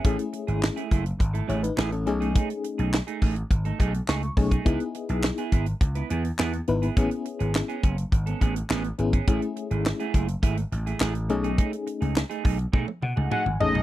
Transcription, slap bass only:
\new Staff \with { instrumentName = "Slap bass" } { \clef bass \time 4/4 \key b \mixolydian \tempo 4 = 104 a,,16 r8 gis,,8 r16 fis,,8 gis,,8 a,,8 a,,8 b,,8~ | b,,16 r8 b,,8 r16 a,,8 gis,,8 b,,8 cis,8 b,,8 | cis,16 r8 b,,8 r16 gis,,8 cis,8 e,8 e,8 gis,,8 | a,,16 r8 gis,,8 r16 fis,,8 gis,,8 a,,8 a,,8 gis,,8 |
a,,16 r8 gis,,8 r16 fis,,8 gis,,8 a,,8 a,,8 b,,8~ | b,,16 r8 cis,8 r16 b,,8 b,16 r16 b,16 cis,16 r16 gis,,16 a,,16 b,,16 | }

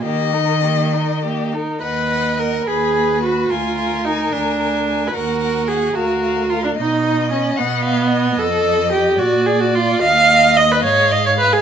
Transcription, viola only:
\new Staff \with { instrumentName = "Viola" } { \time 6/8 \key ees \major \tempo 4. = 73 bes8 ees'8 bes8 ees'8 bes8 ees'8 | \key ees \minor ces''4 bes'8 aes'4 ges'8 | f'4 ees'8 d'4~ d'16. ces''32 | bes'4 aes'8 ges'4 f'16 d'16 |
dis'4 des'8 b4. | a'4 g'8 ges'8 aes'16 ges'16 f'8 | f''4 ees''16 ces''16 des''8 ees''16 des''16 ces''16 aes'16 | }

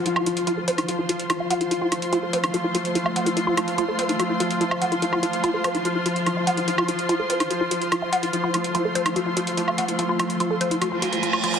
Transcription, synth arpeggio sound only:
\new Staff \with { instrumentName = "Synth arpeggio sound" } { \time 4/4 \key f \major \tempo 4 = 145 f'16 f'16 f'16 r16 f'16 a'16 c''16 e'16 ges'16 f'16 ges'16 r16 f'16 f''16 ges''16 f'16 | f'16 f'16 f'16 r16 f'16 a'16 c''16 e'16 ges'16 f'16 ges'16 r16 f'16 f''16 ges''16 f'16 | f'16 f'16 f'16 r16 f'16 a'16 c''16 e'16 ges'16 f'16 ges'16 r16 f'16 f''16 ges''16 f'16 | f'16 f'16 f'16 r16 f'16 a'16 c''16 e'16 ges'16 f'16 ges'16 r16 f'16 f''16 ges''16 f'16 |
f'16 f'16 f'16 r16 f'16 a'16 c''16 e'16 ges'16 f'16 ges'16 r16 f'16 f''16 ges''16 f'16 | f'16 f'16 f'16 r16 f'16 a'16 c''16 e'16 ges'16 f'16 ges'16 r16 f'16 f''16 ges''16 f'16 | f'16 f'16 f'16 r16 f'16 a'16 c''16 e'16 ges'16 f'16 ges'16 f'16 f'16 f'16 f'16 f'16 | }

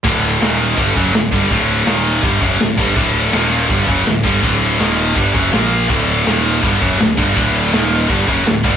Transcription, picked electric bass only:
\new Staff \with { instrumentName = "Picked electric bass" } { \clef bass \time 4/4 \tempo 4 = 164 d,,4 ees,,4 g,,8 fis,,8 d,,8 g,,8 | d,,4 ees,,4 g,,8 fis,,8 d,,8 g,,8 | d,,4 ees,,4 g,,8 fis,,8 d,,8 g,,8 | d,,4 ees,,4 g,,8 fis,,8 bes,,4 |
d,,4 ees,,4 g,,8 fis,,8 d,,8 g,,8 | d,,4 ees,,4 g,,8 fis,,8 d,,8 g,,8 | }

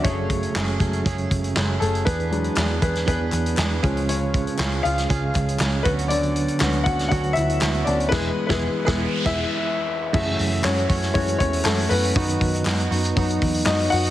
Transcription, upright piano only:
<<
  \new Staff \with { instrumentName = "Upright piano" } { \time 4/4 \key fis \minor \tempo 4 = 119 <cis' cis''>2.~ <cis' cis''>8 <a a'>8 | <b b'>4. <b b'>8 <b b'>2 | <cis' cis''>4 r8 <eis' eis''>4 r4 <b b'>8 | <d d''>4. <fis' fis''>8 <fis' fis''>8 <e' e''>4 <d' d''>8 |
<e gis b b'>8 r16 <e gis b b'>8 r16 <e gis b b'>8 r16 <e' e''>8 r4 r16 | e''4 <cis' cis''>4 <cis' cis''>8 <cis' cis''>8 <a a'>8 <b b'>8~ | <b b'>4 r2 <dis' dis''>8 <fis' fis''>8 | }
  \new Staff \with { instrumentName = "Upright piano" } { \time 4/4 \key fis \minor <fis a gis'>4. <fis gis a>8 r2 | r8 <fis gis d'>8 r2 r8 <eis gis cis'>8 | r1 | r4 <d b cis'>4. r4 <d b cis'>8 |
r1 | <a e' gis'>4. r8 <gis a e'>8 r4. | <fis b dis'>8 r4. <fis b dis'>8 r4. | }
>>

